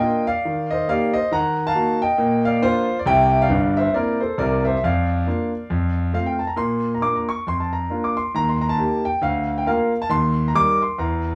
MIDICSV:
0, 0, Header, 1, 2, 480
1, 0, Start_track
1, 0, Key_signature, -2, "major"
1, 0, Tempo, 440205
1, 1424, Time_signature, 4, 2, 24, 8
1, 12376, End_track
2, 0, Start_track
2, 0, Title_t, "Grand piano"
2, 0, Program_c, 0, 0
2, 0, Note_on_c, 0, 58, 51
2, 0, Note_on_c, 0, 62, 39
2, 0, Note_on_c, 0, 75, 67
2, 0, Note_on_c, 0, 79, 80
2, 7, Note_on_c, 0, 65, 54
2, 258, Note_off_c, 0, 58, 0
2, 260, Note_off_c, 0, 62, 0
2, 261, Note_off_c, 0, 75, 0
2, 265, Note_off_c, 0, 65, 0
2, 280, Note_off_c, 0, 79, 0
2, 296, Note_on_c, 0, 77, 88
2, 307, Note_on_c, 0, 74, 60
2, 493, Note_on_c, 0, 51, 74
2, 699, Control_c, 0, 64, 127
2, 735, Note_off_c, 0, 74, 0
2, 762, Note_off_c, 0, 77, 0
2, 769, Note_on_c, 0, 75, 77
2, 789, Note_on_c, 0, 72, 60
2, 888, Note_off_c, 0, 51, 0
2, 952, Note_off_c, 0, 72, 0
2, 953, Control_c, 0, 64, 0
2, 954, Note_off_c, 0, 75, 0
2, 958, Note_on_c, 0, 58, 59
2, 960, Note_on_c, 0, 63, 59
2, 966, Note_on_c, 0, 67, 60
2, 971, Note_on_c, 0, 77, 90
2, 981, Note_on_c, 0, 74, 75
2, 1218, Note_off_c, 0, 58, 0
2, 1219, Note_off_c, 0, 63, 0
2, 1223, Note_off_c, 0, 67, 0
2, 1228, Note_off_c, 0, 74, 0
2, 1237, Note_on_c, 0, 75, 88
2, 1242, Note_off_c, 0, 77, 0
2, 1254, Note_on_c, 0, 72, 60
2, 1424, Note_off_c, 0, 72, 0
2, 1428, Note_off_c, 0, 75, 0
2, 1435, Note_on_c, 0, 51, 80
2, 1445, Note_on_c, 0, 82, 91
2, 1457, Note_on_c, 0, 78, 84
2, 1660, Control_c, 0, 64, 127
2, 1796, Note_off_c, 0, 78, 0
2, 1816, Note_off_c, 0, 82, 0
2, 1817, Note_on_c, 0, 81, 93
2, 1830, Note_on_c, 0, 77, 68
2, 1837, Note_off_c, 0, 51, 0
2, 1905, Note_on_c, 0, 63, 45
2, 1907, Note_on_c, 0, 58, 48
2, 1911, Control_c, 0, 64, 0
2, 1915, Note_on_c, 0, 66, 50
2, 2168, Note_off_c, 0, 63, 0
2, 2170, Note_off_c, 0, 58, 0
2, 2174, Note_off_c, 0, 77, 0
2, 2175, Note_off_c, 0, 66, 0
2, 2193, Note_off_c, 0, 81, 0
2, 2201, Note_on_c, 0, 79, 83
2, 2216, Note_on_c, 0, 75, 59
2, 2378, Note_on_c, 0, 46, 74
2, 2615, Control_c, 0, 64, 127
2, 2648, Note_off_c, 0, 75, 0
2, 2673, Note_off_c, 0, 79, 0
2, 2673, Note_on_c, 0, 77, 85
2, 2689, Note_on_c, 0, 74, 64
2, 2787, Note_off_c, 0, 46, 0
2, 2847, Note_on_c, 0, 58, 56
2, 2853, Note_on_c, 0, 62, 52
2, 2860, Note_off_c, 0, 74, 0
2, 2862, Note_on_c, 0, 72, 103
2, 2865, Note_off_c, 0, 77, 0
2, 2870, Control_c, 0, 64, 0
2, 2872, Note_on_c, 0, 65, 83
2, 3115, Note_off_c, 0, 58, 0
2, 3119, Note_off_c, 0, 62, 0
2, 3222, Note_off_c, 0, 65, 0
2, 3243, Note_off_c, 0, 72, 0
2, 3264, Note_on_c, 0, 74, 76
2, 3333, Note_on_c, 0, 36, 85
2, 3336, Note_on_c, 0, 48, 84
2, 3346, Note_on_c, 0, 79, 109
2, 3351, Note_off_c, 0, 74, 0
2, 3359, Note_on_c, 0, 76, 74
2, 3566, Control_c, 0, 64, 127
2, 3705, Note_off_c, 0, 76, 0
2, 3720, Note_off_c, 0, 36, 0
2, 3721, Note_off_c, 0, 48, 0
2, 3725, Note_off_c, 0, 79, 0
2, 3726, Note_on_c, 0, 77, 84
2, 3740, Note_on_c, 0, 74, 71
2, 3804, Note_on_c, 0, 43, 78
2, 3815, Note_on_c, 0, 31, 80
2, 3833, Control_c, 0, 64, 0
2, 4086, Note_off_c, 0, 74, 0
2, 4106, Note_off_c, 0, 77, 0
2, 4110, Note_on_c, 0, 76, 91
2, 4121, Note_on_c, 0, 72, 65
2, 4194, Note_off_c, 0, 43, 0
2, 4200, Note_off_c, 0, 31, 0
2, 4288, Note_on_c, 0, 60, 43
2, 4290, Note_on_c, 0, 64, 42
2, 4293, Note_on_c, 0, 58, 48
2, 4295, Note_off_c, 0, 72, 0
2, 4300, Note_on_c, 0, 74, 81
2, 4302, Note_off_c, 0, 76, 0
2, 4312, Note_on_c, 0, 70, 75
2, 4555, Note_off_c, 0, 60, 0
2, 4556, Note_off_c, 0, 64, 0
2, 4558, Note_off_c, 0, 58, 0
2, 4570, Note_off_c, 0, 70, 0
2, 4583, Note_off_c, 0, 74, 0
2, 4584, Note_on_c, 0, 72, 63
2, 4601, Note_on_c, 0, 69, 51
2, 4774, Note_off_c, 0, 69, 0
2, 4775, Note_on_c, 0, 48, 75
2, 4776, Note_on_c, 0, 36, 73
2, 4779, Note_off_c, 0, 72, 0
2, 4783, Note_on_c, 0, 74, 91
2, 4797, Note_on_c, 0, 70, 68
2, 5053, Note_off_c, 0, 70, 0
2, 5065, Note_off_c, 0, 74, 0
2, 5067, Note_on_c, 0, 76, 76
2, 5076, Note_on_c, 0, 72, 62
2, 5159, Note_off_c, 0, 48, 0
2, 5160, Note_off_c, 0, 36, 0
2, 5185, Note_off_c, 0, 76, 0
2, 5193, Note_off_c, 0, 72, 0
2, 5201, Note_on_c, 0, 76, 71
2, 5260, Note_off_c, 0, 76, 0
2, 5275, Note_on_c, 0, 41, 81
2, 5283, Note_on_c, 0, 77, 81
2, 5295, Note_on_c, 0, 74, 62
2, 5489, Control_c, 0, 64, 127
2, 5675, Note_off_c, 0, 41, 0
2, 5743, Note_on_c, 0, 58, 42
2, 5748, Control_c, 0, 64, 0
2, 5750, Note_on_c, 0, 62, 38
2, 5754, Note_on_c, 0, 65, 48
2, 6005, Note_off_c, 0, 58, 0
2, 6010, Note_off_c, 0, 62, 0
2, 6013, Note_off_c, 0, 65, 0
2, 6217, Note_on_c, 0, 41, 72
2, 6399, Control_c, 0, 64, 127
2, 6625, Note_off_c, 0, 41, 0
2, 6671, Note_off_c, 0, 74, 0
2, 6684, Note_off_c, 0, 77, 0
2, 6688, Note_on_c, 0, 57, 39
2, 6694, Note_on_c, 0, 60, 47
2, 6698, Note_on_c, 0, 65, 46
2, 6700, Note_on_c, 0, 77, 79
2, 6712, Control_c, 0, 64, 0
2, 6830, Note_on_c, 0, 79, 58
2, 6840, Note_off_c, 0, 77, 0
2, 6954, Note_off_c, 0, 57, 0
2, 6958, Note_off_c, 0, 60, 0
2, 6961, Note_off_c, 0, 65, 0
2, 6969, Note_on_c, 0, 81, 50
2, 6976, Note_off_c, 0, 79, 0
2, 7058, Note_on_c, 0, 82, 63
2, 7072, Note_off_c, 0, 81, 0
2, 7158, Note_on_c, 0, 46, 70
2, 7166, Note_off_c, 0, 82, 0
2, 7168, Note_on_c, 0, 84, 82
2, 7384, Control_c, 0, 64, 127
2, 7554, Note_off_c, 0, 84, 0
2, 7573, Note_off_c, 0, 46, 0
2, 7573, Note_on_c, 0, 82, 49
2, 7648, Note_on_c, 0, 58, 38
2, 7655, Note_on_c, 0, 62, 32
2, 7655, Note_on_c, 0, 65, 41
2, 7657, Note_on_c, 0, 86, 74
2, 7663, Note_off_c, 0, 82, 0
2, 7671, Control_c, 0, 64, 0
2, 7799, Note_off_c, 0, 86, 0
2, 7800, Note_on_c, 0, 82, 43
2, 7914, Note_off_c, 0, 58, 0
2, 7919, Note_off_c, 0, 62, 0
2, 7920, Note_off_c, 0, 65, 0
2, 7941, Note_off_c, 0, 82, 0
2, 7946, Note_on_c, 0, 85, 64
2, 8139, Note_off_c, 0, 85, 0
2, 8145, Note_on_c, 0, 41, 50
2, 8158, Note_on_c, 0, 84, 81
2, 8289, Note_off_c, 0, 84, 0
2, 8289, Note_on_c, 0, 81, 50
2, 8426, Note_off_c, 0, 81, 0
2, 8426, Note_on_c, 0, 82, 61
2, 8549, Note_off_c, 0, 41, 0
2, 8613, Note_on_c, 0, 58, 38
2, 8619, Note_on_c, 0, 62, 43
2, 8624, Note_on_c, 0, 65, 44
2, 8761, Note_off_c, 0, 82, 0
2, 8768, Note_on_c, 0, 86, 56
2, 8878, Note_off_c, 0, 58, 0
2, 8882, Note_off_c, 0, 62, 0
2, 8886, Note_off_c, 0, 65, 0
2, 8906, Note_off_c, 0, 86, 0
2, 8907, Note_on_c, 0, 84, 75
2, 9100, Note_off_c, 0, 84, 0
2, 9101, Note_on_c, 0, 39, 75
2, 9112, Note_on_c, 0, 82, 95
2, 9247, Note_off_c, 0, 82, 0
2, 9256, Note_on_c, 0, 84, 63
2, 9310, Control_c, 0, 64, 127
2, 9390, Note_off_c, 0, 84, 0
2, 9392, Note_on_c, 0, 82, 66
2, 9478, Note_on_c, 0, 81, 77
2, 9485, Note_off_c, 0, 82, 0
2, 9508, Note_off_c, 0, 39, 0
2, 9560, Note_on_c, 0, 58, 46
2, 9565, Note_on_c, 0, 63, 39
2, 9577, Note_on_c, 0, 67, 52
2, 9588, Control_c, 0, 64, 0
2, 9829, Note_off_c, 0, 58, 0
2, 9833, Note_off_c, 0, 63, 0
2, 9841, Note_off_c, 0, 67, 0
2, 9862, Note_off_c, 0, 81, 0
2, 9870, Note_on_c, 0, 79, 72
2, 10049, Note_on_c, 0, 38, 75
2, 10060, Note_on_c, 0, 77, 80
2, 10062, Note_off_c, 0, 79, 0
2, 10263, Control_c, 0, 64, 127
2, 10442, Note_off_c, 0, 77, 0
2, 10443, Note_on_c, 0, 79, 61
2, 10461, Note_off_c, 0, 38, 0
2, 10536, Note_on_c, 0, 58, 58
2, 10540, Note_off_c, 0, 79, 0
2, 10542, Note_on_c, 0, 65, 58
2, 10546, Note_on_c, 0, 77, 76
2, 10547, Note_on_c, 0, 70, 58
2, 10555, Control_c, 0, 64, 0
2, 10801, Note_off_c, 0, 58, 0
2, 10805, Note_off_c, 0, 65, 0
2, 10809, Note_off_c, 0, 70, 0
2, 10921, Note_on_c, 0, 81, 79
2, 10925, Note_off_c, 0, 77, 0
2, 11009, Note_on_c, 0, 39, 84
2, 11018, Note_on_c, 0, 84, 100
2, 11019, Note_off_c, 0, 81, 0
2, 11228, Control_c, 0, 64, 127
2, 11401, Note_off_c, 0, 84, 0
2, 11422, Note_off_c, 0, 39, 0
2, 11427, Note_on_c, 0, 82, 67
2, 11500, Note_on_c, 0, 55, 52
2, 11508, Note_on_c, 0, 63, 49
2, 11509, Note_on_c, 0, 86, 106
2, 11511, Note_on_c, 0, 70, 55
2, 11512, Note_off_c, 0, 82, 0
2, 11517, Control_c, 0, 64, 0
2, 11764, Note_off_c, 0, 55, 0
2, 11770, Note_off_c, 0, 63, 0
2, 11772, Note_off_c, 0, 70, 0
2, 11790, Note_off_c, 0, 86, 0
2, 11801, Note_on_c, 0, 84, 69
2, 11977, Note_on_c, 0, 40, 68
2, 11985, Note_on_c, 0, 82, 69
2, 11989, Note_off_c, 0, 84, 0
2, 12205, Control_c, 0, 64, 127
2, 12376, Note_off_c, 0, 40, 0
2, 12376, Note_off_c, 0, 82, 0
2, 12376, End_track
0, 0, End_of_file